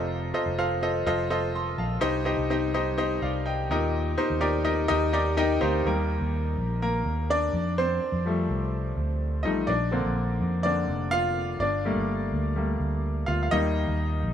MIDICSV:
0, 0, Header, 1, 3, 480
1, 0, Start_track
1, 0, Tempo, 478851
1, 113, Time_signature, 4, 2, 24, 8
1, 14369, End_track
2, 0, Start_track
2, 0, Title_t, "Grand piano"
2, 0, Program_c, 0, 0
2, 0, Note_on_c, 0, 48, 67
2, 0, Note_on_c, 0, 65, 70
2, 0, Note_on_c, 0, 69, 70
2, 0, Note_on_c, 0, 72, 67
2, 0, Note_on_c, 0, 75, 88
2, 84, Control_c, 0, 64, 127
2, 287, Note_off_c, 0, 65, 0
2, 287, Note_off_c, 0, 69, 0
2, 289, Note_off_c, 0, 72, 0
2, 289, Note_off_c, 0, 75, 0
2, 340, Note_on_c, 0, 65, 70
2, 341, Note_on_c, 0, 72, 63
2, 343, Note_on_c, 0, 69, 67
2, 345, Note_on_c, 0, 75, 89
2, 551, Note_off_c, 0, 48, 0
2, 554, Note_off_c, 0, 65, 0
2, 554, Note_off_c, 0, 72, 0
2, 555, Note_off_c, 0, 69, 0
2, 556, Note_off_c, 0, 75, 0
2, 586, Note_on_c, 0, 65, 74
2, 588, Note_on_c, 0, 69, 66
2, 588, Note_on_c, 0, 72, 62
2, 588, Note_on_c, 0, 77, 91
2, 797, Note_off_c, 0, 65, 0
2, 798, Note_off_c, 0, 69, 0
2, 798, Note_off_c, 0, 72, 0
2, 798, Note_off_c, 0, 77, 0
2, 827, Note_on_c, 0, 65, 72
2, 830, Note_on_c, 0, 72, 67
2, 830, Note_on_c, 0, 75, 86
2, 832, Note_on_c, 0, 69, 69
2, 1037, Note_off_c, 0, 65, 0
2, 1039, Note_off_c, 0, 72, 0
2, 1039, Note_off_c, 0, 75, 0
2, 1040, Note_off_c, 0, 69, 0
2, 1066, Note_on_c, 0, 69, 76
2, 1067, Note_on_c, 0, 65, 91
2, 1073, Note_on_c, 0, 75, 98
2, 1075, Note_on_c, 0, 72, 74
2, 1277, Note_off_c, 0, 69, 0
2, 1278, Note_off_c, 0, 65, 0
2, 1281, Note_off_c, 0, 75, 0
2, 1282, Note_off_c, 0, 72, 0
2, 1306, Note_on_c, 0, 72, 72
2, 1307, Note_on_c, 0, 65, 84
2, 1308, Note_on_c, 0, 69, 75
2, 1311, Note_on_c, 0, 75, 89
2, 1517, Note_off_c, 0, 72, 0
2, 1518, Note_off_c, 0, 65, 0
2, 1518, Note_off_c, 0, 69, 0
2, 1520, Note_off_c, 0, 75, 0
2, 1559, Note_on_c, 0, 84, 67
2, 1565, Note_on_c, 0, 81, 53
2, 1771, Note_off_c, 0, 81, 0
2, 1785, Note_off_c, 0, 84, 0
2, 1786, Note_on_c, 0, 81, 61
2, 1797, Note_on_c, 0, 77, 56
2, 2014, Note_on_c, 0, 63, 96
2, 2014, Note_on_c, 0, 67, 81
2, 2016, Note_on_c, 0, 43, 65
2, 2019, Note_on_c, 0, 72, 94
2, 2019, Note_on_c, 0, 75, 107
2, 2045, Control_c, 0, 64, 0
2, 2231, Note_off_c, 0, 63, 0
2, 2231, Note_off_c, 0, 67, 0
2, 2234, Note_off_c, 0, 72, 0
2, 2234, Note_off_c, 0, 75, 0
2, 2238, Control_c, 0, 64, 127
2, 2246, Note_off_c, 0, 81, 0
2, 2252, Note_off_c, 0, 77, 0
2, 2257, Note_on_c, 0, 63, 80
2, 2263, Note_on_c, 0, 72, 80
2, 2264, Note_on_c, 0, 67, 77
2, 2265, Note_on_c, 0, 75, 89
2, 2473, Note_off_c, 0, 63, 0
2, 2476, Note_off_c, 0, 67, 0
2, 2476, Note_off_c, 0, 72, 0
2, 2477, Note_off_c, 0, 75, 0
2, 2508, Note_on_c, 0, 63, 85
2, 2508, Note_on_c, 0, 72, 70
2, 2512, Note_on_c, 0, 67, 68
2, 2517, Note_on_c, 0, 75, 87
2, 2705, Note_off_c, 0, 43, 0
2, 2718, Note_off_c, 0, 72, 0
2, 2719, Note_off_c, 0, 63, 0
2, 2720, Note_off_c, 0, 67, 0
2, 2723, Note_off_c, 0, 75, 0
2, 2748, Note_on_c, 0, 67, 68
2, 2750, Note_on_c, 0, 72, 79
2, 2751, Note_on_c, 0, 75, 84
2, 2752, Note_on_c, 0, 63, 77
2, 2958, Note_off_c, 0, 67, 0
2, 2959, Note_off_c, 0, 72, 0
2, 2960, Note_off_c, 0, 63, 0
2, 2960, Note_off_c, 0, 75, 0
2, 2984, Note_on_c, 0, 63, 84
2, 2988, Note_on_c, 0, 67, 71
2, 2988, Note_on_c, 0, 72, 84
2, 2991, Note_on_c, 0, 75, 95
2, 3196, Note_off_c, 0, 63, 0
2, 3198, Note_off_c, 0, 67, 0
2, 3199, Note_off_c, 0, 72, 0
2, 3200, Note_off_c, 0, 75, 0
2, 3231, Note_on_c, 0, 77, 72
2, 3237, Note_on_c, 0, 74, 54
2, 3461, Note_off_c, 0, 77, 0
2, 3464, Note_off_c, 0, 74, 0
2, 3465, Note_on_c, 0, 79, 71
2, 3476, Note_on_c, 0, 75, 59
2, 3709, Note_off_c, 0, 75, 0
2, 3716, Note_on_c, 0, 63, 81
2, 3716, Note_on_c, 0, 70, 76
2, 3719, Note_on_c, 0, 46, 69
2, 3719, Note_on_c, 0, 67, 68
2, 3724, Note_on_c, 0, 75, 89
2, 3727, Control_c, 0, 64, 0
2, 3871, Control_c, 0, 64, 127
2, 3926, Note_off_c, 0, 79, 0
2, 4129, Note_off_c, 0, 63, 0
2, 4129, Note_off_c, 0, 70, 0
2, 4131, Note_off_c, 0, 67, 0
2, 4133, Note_off_c, 0, 75, 0
2, 4186, Note_on_c, 0, 63, 83
2, 4186, Note_on_c, 0, 67, 70
2, 4189, Note_on_c, 0, 70, 68
2, 4189, Note_on_c, 0, 72, 89
2, 4397, Note_off_c, 0, 46, 0
2, 4397, Note_off_c, 0, 63, 0
2, 4397, Note_off_c, 0, 67, 0
2, 4399, Note_off_c, 0, 70, 0
2, 4399, Note_off_c, 0, 72, 0
2, 4416, Note_on_c, 0, 63, 77
2, 4418, Note_on_c, 0, 70, 79
2, 4420, Note_on_c, 0, 67, 82
2, 4420, Note_on_c, 0, 74, 87
2, 4632, Note_off_c, 0, 63, 0
2, 4633, Note_off_c, 0, 70, 0
2, 4634, Note_off_c, 0, 67, 0
2, 4634, Note_off_c, 0, 74, 0
2, 4655, Note_on_c, 0, 70, 76
2, 4656, Note_on_c, 0, 67, 76
2, 4657, Note_on_c, 0, 63, 78
2, 4657, Note_on_c, 0, 75, 91
2, 4872, Note_off_c, 0, 67, 0
2, 4872, Note_off_c, 0, 70, 0
2, 4873, Note_off_c, 0, 63, 0
2, 4873, Note_off_c, 0, 75, 0
2, 4893, Note_on_c, 0, 70, 80
2, 4895, Note_on_c, 0, 63, 90
2, 4895, Note_on_c, 0, 75, 103
2, 4897, Note_on_c, 0, 67, 91
2, 5111, Note_off_c, 0, 70, 0
2, 5112, Note_off_c, 0, 63, 0
2, 5112, Note_off_c, 0, 75, 0
2, 5113, Note_off_c, 0, 67, 0
2, 5142, Note_on_c, 0, 63, 83
2, 5145, Note_on_c, 0, 67, 81
2, 5147, Note_on_c, 0, 82, 68
2, 5148, Note_on_c, 0, 74, 95
2, 5150, Note_on_c, 0, 70, 74
2, 5355, Note_off_c, 0, 63, 0
2, 5357, Note_off_c, 0, 67, 0
2, 5359, Note_off_c, 0, 70, 0
2, 5359, Note_off_c, 0, 74, 0
2, 5374, Note_off_c, 0, 82, 0
2, 5383, Note_on_c, 0, 79, 76
2, 5384, Note_on_c, 0, 67, 88
2, 5384, Note_on_c, 0, 70, 83
2, 5387, Note_on_c, 0, 63, 94
2, 5390, Note_on_c, 0, 75, 97
2, 5596, Note_off_c, 0, 67, 0
2, 5596, Note_off_c, 0, 70, 0
2, 5598, Note_off_c, 0, 63, 0
2, 5599, Note_off_c, 0, 75, 0
2, 5612, Note_off_c, 0, 79, 0
2, 5621, Note_on_c, 0, 63, 73
2, 5621, Note_on_c, 0, 77, 66
2, 5622, Note_on_c, 0, 67, 78
2, 5623, Note_on_c, 0, 72, 82
2, 5626, Note_on_c, 0, 70, 69
2, 5635, Note_on_c, 0, 60, 60
2, 5835, Note_off_c, 0, 63, 0
2, 5835, Note_off_c, 0, 67, 0
2, 5837, Note_off_c, 0, 70, 0
2, 5838, Note_off_c, 0, 72, 0
2, 5851, Note_off_c, 0, 77, 0
2, 5858, Note_off_c, 0, 60, 0
2, 5870, Note_on_c, 0, 51, 55
2, 5873, Note_on_c, 0, 55, 48
2, 5879, Note_on_c, 0, 70, 85
2, 5882, Note_on_c, 0, 58, 62
2, 5889, Control_c, 0, 64, 0
2, 6073, Control_c, 0, 64, 127
2, 6556, Note_off_c, 0, 51, 0
2, 6558, Note_off_c, 0, 55, 0
2, 6796, Note_off_c, 0, 70, 0
2, 6798, Note_off_c, 0, 58, 0
2, 6840, Note_on_c, 0, 58, 56
2, 6840, Note_on_c, 0, 70, 84
2, 7283, Note_off_c, 0, 58, 0
2, 7283, Note_off_c, 0, 70, 0
2, 7320, Note_on_c, 0, 62, 87
2, 7323, Note_on_c, 0, 74, 107
2, 7567, Control_c, 0, 64, 0
2, 7763, Note_off_c, 0, 62, 0
2, 7765, Note_off_c, 0, 74, 0
2, 7769, Control_c, 0, 64, 127
2, 7800, Note_on_c, 0, 72, 94
2, 7808, Note_on_c, 0, 60, 74
2, 8276, Note_on_c, 0, 53, 56
2, 8281, Note_on_c, 0, 55, 44
2, 8287, Note_on_c, 0, 57, 60
2, 8476, Note_off_c, 0, 72, 0
2, 8480, Note_off_c, 0, 60, 0
2, 8958, Note_off_c, 0, 53, 0
2, 8961, Note_off_c, 0, 55, 0
2, 8964, Note_off_c, 0, 57, 0
2, 9452, Note_on_c, 0, 75, 68
2, 9459, Note_on_c, 0, 53, 48
2, 9463, Note_on_c, 0, 55, 44
2, 9472, Note_on_c, 0, 57, 45
2, 9477, Note_on_c, 0, 63, 66
2, 9681, Note_off_c, 0, 53, 0
2, 9683, Note_off_c, 0, 55, 0
2, 9684, Note_off_c, 0, 75, 0
2, 9688, Note_off_c, 0, 57, 0
2, 9693, Note_on_c, 0, 74, 87
2, 9698, Note_off_c, 0, 63, 0
2, 9717, Note_on_c, 0, 62, 69
2, 9727, Control_c, 0, 64, 0
2, 9895, Control_c, 0, 64, 127
2, 9938, Note_on_c, 0, 50, 53
2, 9945, Note_on_c, 0, 60, 63
2, 9946, Note_on_c, 0, 58, 55
2, 10622, Note_off_c, 0, 74, 0
2, 10628, Note_off_c, 0, 50, 0
2, 10632, Note_off_c, 0, 58, 0
2, 10632, Note_off_c, 0, 60, 0
2, 10634, Note_off_c, 0, 62, 0
2, 10658, Note_on_c, 0, 74, 86
2, 10667, Note_on_c, 0, 50, 39
2, 10670, Note_on_c, 0, 58, 41
2, 10673, Note_on_c, 0, 60, 41
2, 10682, Note_on_c, 0, 62, 64
2, 10884, Note_off_c, 0, 50, 0
2, 10886, Note_off_c, 0, 58, 0
2, 10888, Note_off_c, 0, 60, 0
2, 11123, Note_off_c, 0, 62, 0
2, 11138, Note_on_c, 0, 77, 115
2, 11157, Note_on_c, 0, 65, 84
2, 11159, Note_off_c, 0, 74, 0
2, 11600, Note_off_c, 0, 65, 0
2, 11628, Note_on_c, 0, 74, 83
2, 11638, Note_off_c, 0, 77, 0
2, 11642, Control_c, 0, 64, 0
2, 11652, Note_on_c, 0, 62, 64
2, 11816, Control_c, 0, 64, 127
2, 11881, Note_on_c, 0, 55, 55
2, 11888, Note_on_c, 0, 57, 57
2, 11890, Note_on_c, 0, 58, 64
2, 12195, Note_off_c, 0, 55, 0
2, 12198, Note_off_c, 0, 57, 0
2, 12199, Note_off_c, 0, 58, 0
2, 12309, Note_off_c, 0, 74, 0
2, 12321, Note_off_c, 0, 62, 0
2, 12589, Note_on_c, 0, 55, 47
2, 12594, Note_on_c, 0, 57, 38
2, 12602, Note_on_c, 0, 58, 49
2, 12805, Note_off_c, 0, 55, 0
2, 12808, Note_off_c, 0, 57, 0
2, 12812, Note_off_c, 0, 58, 0
2, 13296, Note_on_c, 0, 77, 87
2, 13311, Note_on_c, 0, 65, 67
2, 13346, Note_off_c, 0, 77, 0
2, 13361, Note_off_c, 0, 65, 0
2, 13460, Note_on_c, 0, 77, 70
2, 13539, Note_off_c, 0, 77, 0
2, 13545, Note_on_c, 0, 51, 54
2, 13545, Note_on_c, 0, 75, 101
2, 13553, Note_on_c, 0, 55, 55
2, 13557, Note_on_c, 0, 58, 60
2, 13559, Note_on_c, 0, 63, 70
2, 13564, Control_c, 0, 64, 0
2, 13750, Control_c, 0, 64, 127
2, 13866, Note_off_c, 0, 51, 0
2, 13870, Note_off_c, 0, 55, 0
2, 13872, Note_off_c, 0, 58, 0
2, 14369, Note_off_c, 0, 63, 0
2, 14369, Note_off_c, 0, 75, 0
2, 14369, End_track
3, 0, Start_track
3, 0, Title_t, "Fingered electric bass"
3, 0, Program_c, 1, 33
3, 0, Note_on_c, 1, 29, 98
3, 314, Note_off_c, 1, 29, 0
3, 458, Note_on_c, 1, 29, 87
3, 1036, Note_off_c, 1, 29, 0
3, 1066, Note_on_c, 1, 29, 92
3, 1754, Note_off_c, 1, 29, 0
3, 1785, Note_on_c, 1, 34, 86
3, 2012, Note_off_c, 1, 34, 0
3, 2024, Note_on_c, 1, 36, 100
3, 2364, Note_off_c, 1, 36, 0
3, 2383, Note_on_c, 1, 36, 83
3, 3189, Note_off_c, 1, 36, 0
3, 3227, Note_on_c, 1, 36, 96
3, 3677, Note_off_c, 1, 36, 0
3, 3704, Note_on_c, 1, 39, 98
3, 4155, Note_off_c, 1, 39, 0
3, 4311, Note_on_c, 1, 39, 93
3, 4883, Note_off_c, 1, 39, 0
3, 4915, Note_on_c, 1, 39, 108
3, 5599, Note_off_c, 1, 39, 0
3, 5632, Note_on_c, 1, 38, 102
3, 5856, Note_off_c, 1, 38, 0
3, 5866, Note_on_c, 1, 39, 97
3, 6205, Note_off_c, 1, 39, 0
3, 6226, Note_on_c, 1, 39, 98
3, 6564, Note_off_c, 1, 39, 0
3, 6583, Note_on_c, 1, 34, 84
3, 7035, Note_off_c, 1, 34, 0
3, 7062, Note_on_c, 1, 39, 80
3, 7514, Note_off_c, 1, 39, 0
3, 7550, Note_on_c, 1, 41, 100
3, 7998, Note_off_c, 1, 41, 0
3, 8141, Note_on_c, 1, 41, 93
3, 8481, Note_off_c, 1, 41, 0
3, 8510, Note_on_c, 1, 36, 86
3, 8957, Note_off_c, 1, 36, 0
3, 8985, Note_on_c, 1, 38, 101
3, 9470, Note_off_c, 1, 38, 0
3, 9470, Note_on_c, 1, 33, 92
3, 9694, Note_off_c, 1, 33, 0
3, 9706, Note_on_c, 1, 34, 113
3, 10043, Note_off_c, 1, 34, 0
3, 10070, Note_on_c, 1, 34, 97
3, 10405, Note_off_c, 1, 34, 0
3, 10431, Note_on_c, 1, 41, 80
3, 10877, Note_off_c, 1, 41, 0
3, 10906, Note_on_c, 1, 29, 80
3, 11592, Note_off_c, 1, 29, 0
3, 11626, Note_on_c, 1, 31, 114
3, 11963, Note_off_c, 1, 31, 0
3, 11986, Note_on_c, 1, 31, 101
3, 12322, Note_off_c, 1, 31, 0
3, 12352, Note_on_c, 1, 38, 92
3, 12797, Note_off_c, 1, 38, 0
3, 12828, Note_on_c, 1, 38, 80
3, 13275, Note_off_c, 1, 38, 0
3, 13310, Note_on_c, 1, 38, 101
3, 13533, Note_off_c, 1, 38, 0
3, 13555, Note_on_c, 1, 39, 94
3, 13887, Note_off_c, 1, 39, 0
3, 13912, Note_on_c, 1, 39, 97
3, 14245, Note_off_c, 1, 39, 0
3, 14263, Note_on_c, 1, 34, 86
3, 14369, Note_off_c, 1, 34, 0
3, 14369, End_track
0, 0, End_of_file